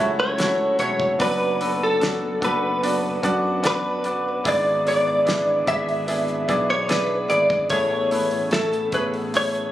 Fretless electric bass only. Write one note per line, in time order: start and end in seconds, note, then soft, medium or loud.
0.00 0.75 C#2 medium
0.79 1.17 E1 medium
1.20 2.38 F#1 loud
2.42 3.19 F#1 medium
3.23 4.41 F#2 medium
4.45 5.63 G#1 loud
5.67 6.45 G#1 medium
6.49 7.26 B1 medium
7.30 7.68 G#1 medium
7.70 8.89 A1 medium
8.92 9.71 A1 medium